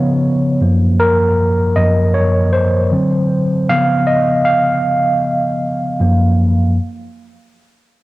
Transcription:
0, 0, Header, 1, 2, 480
1, 0, Start_track
1, 0, Key_signature, 6, "major"
1, 0, Tempo, 769231
1, 375, Time_signature, 4, 2, 24, 8
1, 5011, End_track
2, 0, Start_track
2, 0, Title_t, "Tine electric piano"
2, 0, Program_c, 0, 4
2, 0, Control_c, 0, 64, 127
2, 0, Note_on_c, 0, 49, 62
2, 0, Note_on_c, 0, 53, 51
2, 0, Note_on_c, 0, 59, 64
2, 0, Note_on_c, 0, 73, 77
2, 111, Note_off_c, 0, 73, 0
2, 354, Note_off_c, 0, 49, 0
2, 356, Note_off_c, 0, 53, 0
2, 358, Note_off_c, 0, 59, 0
2, 379, Note_on_c, 0, 42, 55
2, 383, Control_c, 0, 64, 0
2, 385, Note_on_c, 0, 53, 52
2, 387, Note_on_c, 0, 58, 61
2, 508, Control_c, 0, 64, 127
2, 623, Note_on_c, 0, 70, 93
2, 707, Note_off_c, 0, 42, 0
2, 710, Note_off_c, 0, 53, 0
2, 711, Note_off_c, 0, 58, 0
2, 1098, Note_on_c, 0, 75, 99
2, 1103, Note_on_c, 0, 42, 49
2, 1106, Note_on_c, 0, 53, 46
2, 1107, Note_on_c, 0, 58, 49
2, 1113, Note_off_c, 0, 70, 0
2, 1315, Note_off_c, 0, 42, 0
2, 1317, Note_off_c, 0, 53, 0
2, 1318, Note_off_c, 0, 58, 0
2, 1337, Note_on_c, 0, 73, 98
2, 1344, Note_off_c, 0, 75, 0
2, 1578, Note_on_c, 0, 72, 88
2, 1583, Note_off_c, 0, 73, 0
2, 1822, Note_on_c, 0, 50, 58
2, 1823, Control_c, 0, 64, 0
2, 1827, Note_on_c, 0, 54, 52
2, 1831, Note_on_c, 0, 60, 62
2, 1937, Control_c, 0, 64, 127
2, 2032, Note_off_c, 0, 72, 0
2, 2275, Note_off_c, 0, 50, 0
2, 2277, Note_off_c, 0, 54, 0
2, 2279, Note_off_c, 0, 60, 0
2, 2303, Control_c, 0, 64, 0
2, 2304, Note_on_c, 0, 49, 53
2, 2306, Note_on_c, 0, 77, 108
2, 2307, Note_on_c, 0, 53, 50
2, 2311, Note_on_c, 0, 59, 61
2, 2400, Control_c, 0, 64, 127
2, 2524, Note_off_c, 0, 77, 0
2, 2539, Note_on_c, 0, 75, 93
2, 2629, Note_off_c, 0, 49, 0
2, 2631, Note_off_c, 0, 53, 0
2, 2633, Note_off_c, 0, 59, 0
2, 2777, Note_on_c, 0, 77, 92
2, 2784, Note_off_c, 0, 75, 0
2, 3743, Control_c, 0, 64, 0
2, 3743, Note_on_c, 0, 42, 54
2, 3748, Note_on_c, 0, 53, 50
2, 3750, Note_on_c, 0, 58, 64
2, 3841, Control_c, 0, 64, 127
2, 3951, Note_off_c, 0, 77, 0
2, 4069, Note_off_c, 0, 42, 0
2, 4071, Note_off_c, 0, 53, 0
2, 4073, Note_off_c, 0, 58, 0
2, 4223, Control_c, 0, 64, 0
2, 5011, End_track
0, 0, End_of_file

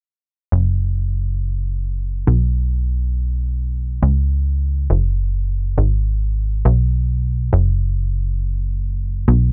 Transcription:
0, 0, Header, 1, 2, 480
1, 0, Start_track
1, 0, Tempo, 437956
1, 572, Time_signature, 4, 2, 24, 8
1, 10438, End_track
2, 0, Start_track
2, 0, Title_t, "Analog synth bass"
2, 0, Program_c, 0, 38
2, 572, Note_on_c, 0, 30, 86
2, 2468, Note_off_c, 0, 30, 0
2, 2492, Note_on_c, 0, 35, 83
2, 4388, Note_off_c, 0, 35, 0
2, 4412, Note_on_c, 0, 37, 84
2, 5348, Note_off_c, 0, 37, 0
2, 5371, Note_on_c, 0, 30, 86
2, 6307, Note_off_c, 0, 30, 0
2, 6332, Note_on_c, 0, 32, 82
2, 7268, Note_off_c, 0, 32, 0
2, 7291, Note_on_c, 0, 35, 88
2, 8227, Note_off_c, 0, 35, 0
2, 8250, Note_on_c, 0, 30, 85
2, 10147, Note_off_c, 0, 30, 0
2, 10170, Note_on_c, 0, 35, 87
2, 10438, Note_off_c, 0, 35, 0
2, 10438, End_track
0, 0, End_of_file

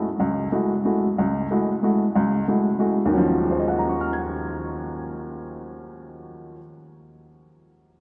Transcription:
0, 0, Header, 1, 2, 480
1, 0, Start_track
1, 0, Tempo, 324851
1, 285, Time_signature, 3, 2, 24, 8
1, 11824, End_track
2, 0, Start_track
2, 0, Title_t, "Upright piano"
2, 0, Program_c, 0, 0
2, 290, Note_on_c, 0, 37, 69
2, 699, Note_off_c, 0, 37, 0
2, 770, Note_on_c, 0, 56, 51
2, 770, Note_on_c, 0, 57, 46
2, 773, Note_on_c, 0, 64, 44
2, 784, Note_on_c, 0, 66, 57
2, 1079, Note_off_c, 0, 56, 0
2, 1079, Note_off_c, 0, 57, 0
2, 1080, Note_off_c, 0, 64, 0
2, 1085, Note_off_c, 0, 66, 0
2, 1255, Note_on_c, 0, 56, 48
2, 1260, Note_on_c, 0, 57, 44
2, 1264, Note_on_c, 0, 64, 48
2, 1264, Note_on_c, 0, 66, 53
2, 1561, Note_off_c, 0, 56, 0
2, 1563, Note_off_c, 0, 57, 0
2, 1565, Note_off_c, 0, 64, 0
2, 1565, Note_off_c, 0, 66, 0
2, 1750, Note_on_c, 0, 37, 67
2, 2149, Note_off_c, 0, 37, 0
2, 2225, Note_on_c, 0, 57, 44
2, 2228, Note_on_c, 0, 56, 47
2, 2240, Note_on_c, 0, 64, 50
2, 2240, Note_on_c, 0, 66, 53
2, 2526, Note_off_c, 0, 57, 0
2, 2527, Note_off_c, 0, 56, 0
2, 2533, Note_off_c, 0, 64, 0
2, 2533, Note_off_c, 0, 66, 0
2, 2701, Note_on_c, 0, 56, 49
2, 2707, Note_on_c, 0, 57, 45
2, 2711, Note_on_c, 0, 64, 45
2, 2718, Note_on_c, 0, 66, 58
2, 3004, Note_off_c, 0, 56, 0
2, 3007, Note_off_c, 0, 57, 0
2, 3009, Note_off_c, 0, 64, 0
2, 3012, Note_off_c, 0, 66, 0
2, 3183, Note_on_c, 0, 37, 67
2, 3586, Note_off_c, 0, 37, 0
2, 3665, Note_on_c, 0, 56, 50
2, 3665, Note_on_c, 0, 57, 45
2, 3668, Note_on_c, 0, 64, 46
2, 3677, Note_on_c, 0, 66, 52
2, 3966, Note_off_c, 0, 56, 0
2, 3966, Note_off_c, 0, 57, 0
2, 3967, Note_off_c, 0, 64, 0
2, 3972, Note_off_c, 0, 66, 0
2, 4121, Note_on_c, 0, 56, 48
2, 4129, Note_on_c, 0, 57, 42
2, 4132, Note_on_c, 0, 64, 41
2, 4134, Note_on_c, 0, 66, 54
2, 4434, Note_off_c, 0, 56, 0
2, 4438, Note_off_c, 0, 57, 0
2, 4439, Note_off_c, 0, 64, 0
2, 4440, Note_off_c, 0, 66, 0
2, 4514, Note_on_c, 0, 39, 59
2, 4551, Note_on_c, 0, 51, 58
2, 4599, Note_on_c, 0, 54, 56
2, 4640, Note_on_c, 0, 61, 57
2, 4693, Note_on_c, 0, 53, 68
2, 5076, Note_on_c, 0, 68, 40
2, 5183, Note_on_c, 0, 72, 41
2, 5304, Note_on_c, 0, 75, 40
2, 5438, Note_on_c, 0, 78, 37
2, 5587, Note_on_c, 0, 82, 34
2, 5749, Note_on_c, 0, 85, 32
2, 5920, Note_on_c, 0, 89, 31
2, 6104, Note_on_c, 0, 92, 29
2, 9638, Note_off_c, 0, 68, 0
2, 9656, Note_off_c, 0, 39, 0
2, 9675, Note_off_c, 0, 51, 0
2, 9691, Note_off_c, 0, 72, 0
2, 9699, Note_off_c, 0, 54, 0
2, 9719, Note_off_c, 0, 61, 0
2, 9745, Note_off_c, 0, 53, 0
2, 9752, Note_off_c, 0, 75, 0
2, 9819, Note_off_c, 0, 78, 0
2, 9893, Note_off_c, 0, 82, 0
2, 9974, Note_off_c, 0, 85, 0
2, 10060, Note_off_c, 0, 89, 0
2, 10152, Note_off_c, 0, 92, 0
2, 11824, End_track
0, 0, End_of_file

